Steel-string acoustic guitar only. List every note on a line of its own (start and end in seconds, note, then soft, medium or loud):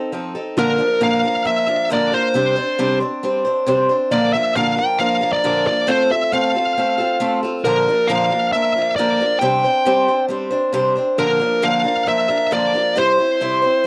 0.00 0.12 C4 soft
0.00 0.12 D#4 medium
0.00 0.13 A4 medium
0.12 0.36 F3 medium
0.12 0.36 C4 medium
0.12 0.35 D#4 medium
0.12 0.34 A4 medium
0.35 0.58 C4 soft
0.35 0.58 D#4 medium
0.35 0.58 A4 medium
0.57 0.80 A#2 medium
0.57 0.80 D3 medium
0.57 0.79 F3 medium
0.57 0.79 A#3 medium
0.57 0.78 D4 loud
0.57 0.77 A#4 loud
0.78 1.00 F3 medium
0.78 1.00 A#3 soft
0.78 1.00 D4 medium
0.78 1.01 A#4 medium
1.00 1.24 A#2 medium
1.00 1.24 D3 medium
1.00 1.24 F3 medium
1.00 1.24 A#3 loud
1.00 1.23 D4 medium
1.00 1.22 A#4 medium
1.23 1.44 F3 soft
1.23 1.44 A#3 soft
1.23 1.45 D4 soft
1.23 1.46 A#4 medium
1.45 1.68 F3 medium
1.45 1.67 A#3 medium
1.45 1.67 D4 medium
1.45 1.66 A#4 medium
1.67 1.89 F3 soft
1.67 1.90 A#3 medium
1.67 1.90 D4 medium
1.67 1.90 A#4 medium
1.90 2.13 A#2 medium
1.90 2.13 D3 medium
1.90 2.13 F3 medium
1.90 2.12 A#3 medium
1.90 2.11 D4 medium
1.90 2.11 A#4 medium
2.12 2.35 F3 soft
2.12 2.35 A#3 soft
2.12 2.35 D4 soft
2.12 2.35 A#4 soft
2.34 2.57 C3 medium
2.34 2.57 G3 medium
2.34 2.57 C4 medium
2.34 2.56 D4 medium
2.34 2.55 C5 medium
2.56 2.78 C4 soft
2.56 2.78 D4 medium
2.56 2.79 C5 medium
2.79 3.01 C3 medium
2.79 3.01 G3 medium
2.79 3.01 C4 medium
2.79 3.00 D4 medium
2.79 2.99 C5 loud
3.00 3.22 C4 soft
3.00 3.23 D4 medium
3.00 3.23 C5 medium
3.23 3.46 G3 medium
3.23 3.46 C4 medium
3.23 3.45 D4 medium
3.23 3.44 C5 medium
3.45 3.66 C4 soft
3.45 3.67 D4 medium
3.45 3.67 C5 medium
3.67 3.89 C3 medium
3.67 3.90 G3 medium
3.67 3.90 C4 medium
3.67 3.90 D4 medium
3.67 3.88 C5 loud
3.89 4.11 C4 soft
3.89 4.11 D4 medium
3.89 4.12 C5 medium
4.11 4.34 A#2 medium
4.11 4.34 D3 medium
4.11 4.34 F3 medium
4.11 4.34 A#3 medium
4.11 4.34 D4 medium
4.11 4.33 A#4 loud
4.34 4.55 F3 soft
4.34 4.56 A#3 medium
4.34 4.56 D4 medium
4.34 4.56 A#4 medium
4.56 4.78 A#2 medium
4.56 4.78 D3 medium
4.56 4.78 F3 medium
4.56 4.77 A#3 medium
4.56 4.77 D4 medium
4.56 4.76 A#4 medium
4.77 4.98 F3 soft
4.77 4.99 A#3 medium
4.77 4.99 D4 soft
4.77 5.00 A#4 medium
4.99 5.21 F3 medium
4.99 5.21 A#3 medium
4.99 5.20 D4 medium
4.99 5.20 A#4 medium
5.21 5.43 F3 soft
5.21 5.43 A#3 soft
5.21 5.43 D4 soft
5.21 5.44 A#4 medium
5.44 5.67 A#2 medium
5.44 5.67 D3 medium
5.44 5.66 F3 medium
5.44 5.66 A#3 medium
5.44 5.65 D4 medium
5.44 5.64 A#4 medium
5.65 5.87 F3 soft
5.65 5.87 A#3 soft
5.65 5.88 D4 soft
5.65 5.88 A#4 medium
5.87 6.10 A3 loud
5.87 6.11 C4 medium
5.87 6.10 F4 medium
5.87 6.09 A4 loud
6.10 6.32 C4 soft
6.10 6.32 F4 soft
6.10 6.33 A4 medium
6.32 6.55 A3 medium
6.32 6.55 C4 medium
6.32 6.55 F4 medium
6.32 6.54 A4 medium
6.55 6.76 C4 soft
6.55 6.77 F4 soft
6.55 6.77 A4 soft
6.78 7.00 A3 medium
6.78 6.99 C4 medium
6.78 6.98 F4 medium
6.78 6.97 A4 medium
6.98 7.19 C4 medium
6.98 7.20 F4 medium
6.98 7.20 A4 medium
7.20 7.43 A3 medium
7.20 7.43 C4 medium
7.20 7.43 F4 medium
7.20 7.42 A4 medium
7.43 7.65 C4 medium
7.43 7.65 F4 medium
7.43 7.66 A4 medium
7.65 7.87 A#2 medium
7.65 7.88 D3 medium
7.65 7.88 F3 medium
7.65 7.88 A#3 medium
7.65 7.88 D4 medium
7.65 7.87 A#4 medium
7.88 8.08 F3 medium
7.88 8.09 A#3 medium
7.88 8.09 D4 medium
7.88 8.10 A#4 medium
8.09 8.32 A#2 medium
8.09 8.32 D3 medium
8.09 8.31 F3 medium
8.09 8.31 A#3 medium
8.09 8.30 D4 loud
8.09 8.29 A#4 loud
8.30 8.52 F3 soft
8.30 8.53 A#3 soft
8.30 8.53 D4 soft
8.30 8.53 A#4 soft
8.53 8.76 F3 medium
8.53 8.76 A#3 medium
8.53 8.75 D4 medium
8.53 8.75 A#4 medium
8.76 8.98 F3 soft
8.76 8.98 A#3 soft
8.76 8.98 D4 soft
8.76 8.98 A#4 soft
8.98 9.21 A#2 medium
8.98 9.20 D3 medium
8.98 9.21 F3 medium
8.98 9.21 A#3 medium
8.98 9.20 D4 medium
8.98 9.19 A#4 medium
9.21 9.41 F3 soft
9.21 9.42 A#3 soft
9.21 9.41 D4 soft
9.21 9.42 A#4 medium
9.41 9.64 C3 medium
9.41 9.64 G3 medium
9.41 9.64 C4 medium
9.41 9.64 D4 medium
9.41 9.63 C5 loud
9.64 9.85 C4 medium
9.64 9.85 D4 medium
9.64 9.86 C5 medium
9.85 10.08 C3 medium
9.85 10.09 G3 medium
9.85 10.09 C4 medium
9.85 10.08 D4 loud
9.85 10.07 C5 loud
10.08 10.28 C4 soft
10.08 10.29 D4 soft
10.08 10.30 C5 medium
10.28 10.52 G3 medium
10.28 10.52 C4 medium
10.28 10.51 D4 medium
10.28 10.49 C5 medium
10.51 10.73 C4 soft
10.51 10.73 D4 medium
10.51 10.73 C5 medium
10.73 10.96 C3 medium
10.73 10.96 G3 loud
10.73 10.97 C4 loud
10.73 10.96 D4 loud
10.73 10.94 C5 medium
10.95 11.18 C4 medium
10.95 11.18 D4 medium
10.95 11.18 C5 medium
11.18 11.41 A#2 medium
11.18 11.41 D3 medium
11.18 11.41 F3 loud
11.18 11.40 A#3 medium
11.18 11.39 D4 loud
11.18 11.38 A#4 medium
11.39 11.61 F3 soft
11.39 11.62 A#3 medium
11.39 11.62 D4 medium
11.39 11.62 A#4 medium
11.62 11.85 A#2 medium
11.62 11.85 D3 medium
11.62 11.85 F3 loud
11.62 11.84 A#3 medium
11.62 11.83 D4 medium
11.62 11.83 A#4 loud
11.84 12.05 F3 soft
11.84 12.06 A#3 soft
11.84 12.07 D4 medium
11.84 12.07 A#4 medium
12.06 12.29 F3 medium
12.06 12.29 A#3 medium
12.06 12.28 D4 medium
12.06 12.27 A#4 medium
12.29 12.51 F3 soft
12.29 12.51 A#3 medium
12.29 12.51 D4 medium
12.29 12.51 A#4 medium
12.51 12.73 A#2 medium
12.51 12.74 D3 medium
12.51 12.74 F3 medium
12.51 12.74 A#3 medium
12.51 12.74 D4 medium
12.51 12.73 A#4 medium
12.74 12.96 F3 soft
12.74 12.97 A#3 soft
12.74 12.96 D4 soft
12.74 12.96 A#4 soft
12.96 13.18 C3 medium
12.96 13.18 G3 medium
12.96 13.18 C4 medium
12.96 13.18 E4 medium
12.96 13.17 C5 loud
13.18 13.40 C4 soft
13.18 13.41 E4 medium
13.18 13.40 C5 medium
13.41 13.62 C3 medium
13.41 13.62 G3 medium
13.41 13.63 C4 medium
13.41 13.63 E4 medium
13.41 13.61 C5 loud
13.62 13.84 C4 soft
13.62 13.84 E4 medium
13.62 13.84 C5 medium
13.84 13.87 G3 medium